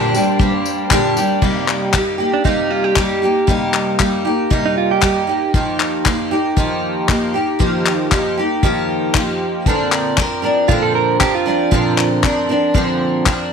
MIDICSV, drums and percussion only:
0, 0, Header, 1, 2, 480
1, 0, Start_track
1, 0, Tempo, 514580
1, 1329, Time_signature, 4, 2, 24, 8
1, 12619, End_track
2, 0, Start_track
2, 0, Title_t, "Drums"
2, 136, Note_on_c, 9, 54, 66
2, 229, Note_off_c, 9, 54, 0
2, 369, Note_on_c, 9, 36, 105
2, 463, Note_off_c, 9, 36, 0
2, 611, Note_on_c, 9, 54, 63
2, 705, Note_off_c, 9, 54, 0
2, 847, Note_on_c, 9, 39, 111
2, 848, Note_on_c, 9, 36, 96
2, 940, Note_off_c, 9, 39, 0
2, 941, Note_off_c, 9, 36, 0
2, 1088, Note_on_c, 9, 54, 66
2, 1181, Note_off_c, 9, 54, 0
2, 1324, Note_on_c, 9, 49, 82
2, 1326, Note_on_c, 9, 36, 103
2, 1417, Note_off_c, 9, 49, 0
2, 1419, Note_off_c, 9, 36, 0
2, 1569, Note_on_c, 9, 39, 87
2, 1662, Note_off_c, 9, 39, 0
2, 1805, Note_on_c, 9, 39, 95
2, 1807, Note_on_c, 9, 36, 81
2, 1898, Note_off_c, 9, 39, 0
2, 1900, Note_off_c, 9, 36, 0
2, 2285, Note_on_c, 9, 36, 93
2, 2378, Note_off_c, 9, 36, 0
2, 2762, Note_on_c, 9, 39, 91
2, 2766, Note_on_c, 9, 36, 86
2, 2855, Note_off_c, 9, 39, 0
2, 2859, Note_off_c, 9, 36, 0
2, 3246, Note_on_c, 9, 36, 101
2, 3339, Note_off_c, 9, 36, 0
2, 3487, Note_on_c, 9, 39, 88
2, 3580, Note_off_c, 9, 39, 0
2, 3726, Note_on_c, 9, 39, 92
2, 3728, Note_on_c, 9, 36, 81
2, 3819, Note_off_c, 9, 39, 0
2, 3821, Note_off_c, 9, 36, 0
2, 4207, Note_on_c, 9, 36, 101
2, 4300, Note_off_c, 9, 36, 0
2, 4685, Note_on_c, 9, 39, 94
2, 4688, Note_on_c, 9, 36, 85
2, 4778, Note_off_c, 9, 39, 0
2, 4782, Note_off_c, 9, 36, 0
2, 5169, Note_on_c, 9, 36, 104
2, 5262, Note_off_c, 9, 36, 0
2, 5410, Note_on_c, 9, 39, 87
2, 5503, Note_off_c, 9, 39, 0
2, 5649, Note_on_c, 9, 39, 94
2, 5650, Note_on_c, 9, 36, 89
2, 5742, Note_off_c, 9, 39, 0
2, 5743, Note_off_c, 9, 36, 0
2, 6128, Note_on_c, 9, 36, 100
2, 6221, Note_off_c, 9, 36, 0
2, 6611, Note_on_c, 9, 36, 92
2, 6612, Note_on_c, 9, 39, 96
2, 6704, Note_off_c, 9, 36, 0
2, 6706, Note_off_c, 9, 39, 0
2, 7091, Note_on_c, 9, 36, 105
2, 7184, Note_off_c, 9, 36, 0
2, 7334, Note_on_c, 9, 39, 94
2, 7428, Note_off_c, 9, 39, 0
2, 7571, Note_on_c, 9, 36, 89
2, 7571, Note_on_c, 9, 39, 92
2, 7664, Note_off_c, 9, 39, 0
2, 7665, Note_off_c, 9, 36, 0
2, 8050, Note_on_c, 9, 36, 105
2, 8144, Note_off_c, 9, 36, 0
2, 8531, Note_on_c, 9, 39, 96
2, 8532, Note_on_c, 9, 36, 86
2, 8624, Note_off_c, 9, 39, 0
2, 8625, Note_off_c, 9, 36, 0
2, 9012, Note_on_c, 9, 36, 103
2, 9105, Note_off_c, 9, 36, 0
2, 9254, Note_on_c, 9, 39, 94
2, 9347, Note_off_c, 9, 39, 0
2, 9491, Note_on_c, 9, 39, 87
2, 9493, Note_on_c, 9, 36, 87
2, 9585, Note_off_c, 9, 39, 0
2, 9587, Note_off_c, 9, 36, 0
2, 9971, Note_on_c, 9, 36, 108
2, 10064, Note_off_c, 9, 36, 0
2, 10452, Note_on_c, 9, 39, 99
2, 10453, Note_on_c, 9, 36, 82
2, 10546, Note_off_c, 9, 36, 0
2, 10546, Note_off_c, 9, 39, 0
2, 10931, Note_on_c, 9, 36, 102
2, 11025, Note_off_c, 9, 36, 0
2, 11176, Note_on_c, 9, 39, 86
2, 11269, Note_off_c, 9, 39, 0
2, 11413, Note_on_c, 9, 36, 91
2, 11414, Note_on_c, 9, 39, 90
2, 11506, Note_off_c, 9, 36, 0
2, 11507, Note_off_c, 9, 39, 0
2, 11890, Note_on_c, 9, 36, 106
2, 11983, Note_off_c, 9, 36, 0
2, 12370, Note_on_c, 9, 36, 89
2, 12370, Note_on_c, 9, 39, 101
2, 12463, Note_off_c, 9, 39, 0
2, 12464, Note_off_c, 9, 36, 0
2, 12619, End_track
0, 0, End_of_file